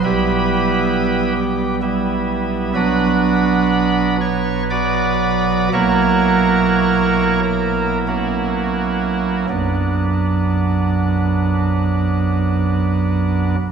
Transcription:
pipe organ
0.04 B1 B2 G3 B3 E4 G4 B4
1.36 G4
1.82 G3 B3 E4
2.75 B1 B2 F#3 B3 D4 F#4 B4
4.21 C#5
4.70 F#4 B4 D5
5.73 B1 B2 F#3 A#3 E4 F#4 A#4 C#5
7.43 A#4
8.08 A#3 C#4 F#4
9.49 B1 F#2 F#3 B3 D4

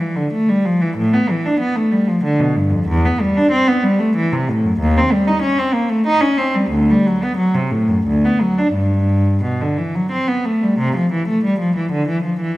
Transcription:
cello
0.00 E3
0.16 D3
0.33 A3
0.49 G3
0.66 F3
0.81 E3
0.97 A2
1.14 B3
1.30 E3
1.46 D4
1.60 B3
1.76 A3
1.92 G3
2.08 F3
2.24 D3
2.40 B2
2.56 G2
2.71 F2
2.88 E2
3.05 B3
3.21 G3
3.37 D4
3.51 C4
3.68 B3
3.83 G3
3.99 A3
4.16 E3
4.33 C3
4.49 A2
4.65 F#2
4.80 D#2
4.98 C4
5.13 G3
5.27 D#4
5.42 C#4
5.59 C4
5.74 A#3
5.90 A3
6.07 D#4
6.21 C#4
6.38 C4
6.55 G3
6.71 D2
6.90 G3
7.07 F#3
7.23 B3
7.37 F#3
7.54 C3
7.71 A2
7.88 F#2
8.07 D2
8.26 B3
8.42 F#3
8.59 D4
8.74 G2
9.44 B2
9.61 D3
9.78 E3
9.95 F#3
10.12 C4
10.28 B3
10.45 A3
10.63 G3
10.79 C3
10.97 F3
11.12 E3
11.28 A3
11.45 G3
11.60 F3
11.76 E3
11.92 D3
12.09 E3
12.24 F3
12.41 E3

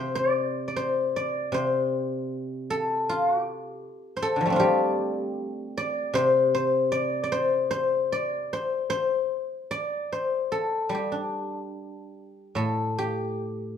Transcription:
guzheng
Already playing: C3 G3 C5
0.15 D5
0.68 D5
0.76 C5
1.16 D5
1.52 C3 C5
2.70 A4
3.09 F4
3.28 F#4
3.40 G4
4.17 C5
4.22 A4
4.36 D3
4.41 F3
4.46 G3 A3
4.50 C4 D4
4.56 G3 F4 G4
5.78 D5
6.14 C3 C5
6.55 C5
6.92 D5
7.24 D5
7.32 C5
7.71 C5
8.12 D5
8.53 C5
8.90 C5
9.71 D5
10.12 C5
10.52 A4
10.89 G3
10.95 G4
11.12 D4
12.55 A2 A4
12.98 G4

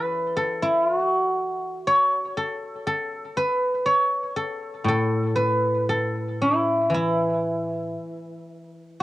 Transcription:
guzheng
Already playing: E3 B4 C#5 E5
0.37 A4
0.62 E4
0.84 F4
0.98 F#4
1.87 C#5
2.37 A4
2.87 A4
3.37 B4
3.86 C#5
4.36 A4
4.84 A2
4.88 A4
5.36 B4
5.89 A4
6.42 E4
6.90 E3
6.94 E4

